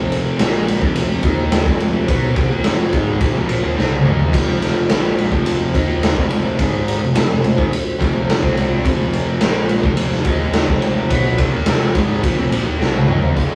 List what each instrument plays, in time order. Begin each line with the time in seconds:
Already playing: picked electric bass F1, overdriven electric guitar F2 C3 F3, string machine C4 F4 C5 G#5
0.12 ride
0.39 picked electric bass A#1, overdriven electric guitar A#2 F3 A#3, snare, ride
0.67 ride, low conga
0.82 picked electric bass F1, overdriven electric guitar F2 C3 F3, kick
0.96 ride
1.23 picked electric bass D#2, overdriven electric guitar D#3 A#3 D#4, kick, ride
1.38 high conga
1.52 snare, ride
1.65 picked electric bass F1, overdriven electric guitar F2 C3 F3, kick
1.80 ride, low conga
2.08 picked electric bass B1, overdriven electric guitar B2 F#3 B3, kick, ride
2.23 high conga
2.36 picked electric bass C2, overdriven electric guitar C3 G3, kick, ride, high conga
2.50 picked electric bass D#2, overdriven electric guitar D#3 A#3
2.64 picked electric bass F1, overdriven electric guitar F2 C3 F3, snare, ride
2.92 picked electric bass G#1, overdriven electric guitar G#2 D#3 G#3, kick, ride, low conga
3.20 picked electric bass A#1, overdriven electric guitar A#2 F3, kick, ride, high conga
3.34 picked electric bass F1, overdriven electric guitar F2 C3, high conga
3.48 picked electric bass A#1, overdriven electric guitar A#2 F3, ride
3.61 picked electric bass D#2, overdriven electric guitar D#3 A#3, high conga, low conga
3.76 picked electric bass C2, overdriven electric guitar C3 G3 C4, snare
3.92 high tom
4.04 picked electric bass D#2, overdriven electric guitar D#3 A#3 D#4, mid tom, low conga
4.19 floor tom
4.32 picked electric bass F1, overdriven electric guitar F2 C3 F3, kick, ride, crash
4.45 high conga
4.62 snare, ride
4.89 picked electric bass A#1, overdriven electric guitar A#2 F3 A#3, snare, ride
5.17 ride, low conga
5.31 picked electric bass F1, overdriven electric guitar F2 C3 F3, kick
5.46 ride
5.74 picked electric bass D#2, overdriven electric guitar D#3 A#3 D#4, kick, ride
5.88 high conga
6.03 snare, ride
6.16 picked electric bass F1, overdriven electric guitar F2 C3 F3, kick
6.30 ride, low conga
6.59 picked electric bass G#1, overdriven electric guitar G#2 D#3 G#3, kick, ride
6.72 high conga
6.88 ride
7.02 picked electric bass F1, overdriven electric guitar F2 C3
7.15 picked electric bass F1, overdriven electric guitar F2 C3, snare, ride
7.28 picked electric bass F1, overdriven electric guitar F2 C3
7.42 picked electric bass F1, overdriven electric guitar F2 C3, ride, low conga
7.56 picked electric bass G#1, overdriven electric guitar G#2 D#3, kick
7.72 muted overdriven electric guitar stroke, muted picked electric bass stroke, ride
7.99 picked electric bass F1, overdriven electric guitar F2 C3 F3, kick, ride
8.13 high conga
8.30 snare, ride
8.41 picked electric bass C2, overdriven electric guitar C3 G3 C4, kick
8.55 ride, low conga
8.85 picked electric bass F1, overdriven electric guitar F2 C3 F3, kick, ride
8.97 high conga
9.13 ride
9.41 picked electric bass A#1, overdriven electric guitar A#2 F3 A#3, snare, ride
9.69 ride, low conga
9.83 picked electric bass F1, overdriven electric guitar F2 C3 F3, kick
9.97 ride
10.12 snare
10.25 picked electric bass D#2, overdriven electric guitar D#3 A#3 D#4, kick, ride
10.39 high conga
10.53 snare, ride
10.68 picked electric bass F1, overdriven electric guitar F2 C3 F3, kick
10.81 ride, low conga
11.09 picked electric bass B1, overdriven electric guitar B2 F#3 B3, kick, ride
11.24 high conga
11.38 picked electric bass C2, overdriven electric guitar C3 G3, kick, ride, high conga
11.52 picked electric bass D#2, overdriven electric guitar D#3 A#3
11.66 picked electric bass F1, overdriven electric guitar F2 C3 F3, snare, ride
11.94 picked electric bass G#1, overdriven electric guitar G#2 D#3 G#3, kick, snare, ride, low conga
12.23 picked electric bass A#1, overdriven electric guitar A#2 F3, kick, ride, high conga
12.38 picked electric bass F1, overdriven electric guitar F2 C3
12.51 picked electric bass A#1, overdriven electric guitar A#2 F3, ride
12.65 picked electric bass D#2, overdriven electric guitar D#3 A#3, high conga
12.79 picked electric bass C2, overdriven electric guitar C3 G3 C4, snare
12.94 high tom
13.07 picked electric bass D#2, overdriven electric guitar D#3 A#3 D#4, mid tom, low conga
13.22 floor tom
13.35 picked electric bass F1, overdriven electric guitar F2 C3 F3 G#3 C4 F4, string machine F4 G#4 C5 F5, kick, closed hi-hat